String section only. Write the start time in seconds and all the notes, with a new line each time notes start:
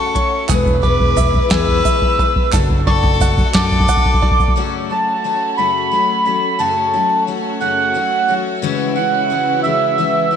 Already playing: A3 C#4 F#4
0.50 E3 E4 G#4 B4
2.54 A3 D4 F#4
4.57 A3 C#4 F#4
6.59 F#4
8.62 C#3 E4